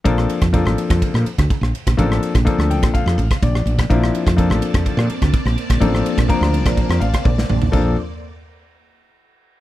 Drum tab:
CC |----------------|----------------|----------------|----------------|
RD |x-xxx-xxx-xxx-xx|x-xxx-xxx-xxx-xx|x-xxx-xxx-xxx-xx|x-xxx-xxx-xx----|
SD |-r-r-r-r-r-r-r-r|-r-r-r-r-r-r-r-r|-r-r-r-r-r-r-r-r|-r-r-r-r-r-r-o--|
T1 |----------------|----------------|----------------|------------o---|
T2 |----------------|----------------|----------------|--------------o-|
FT |----------------|----------------|----------------|---------------o|
BD |o--oo--oo--oo--o|o--oo--oo--oo--o|o--oo--oo--oo--o|o--oo--oo--oo---|

CC |x---------------|
RD |----------------|
SD |----------------|
T1 |----------------|
T2 |----------------|
FT |----------------|
BD |o---------------|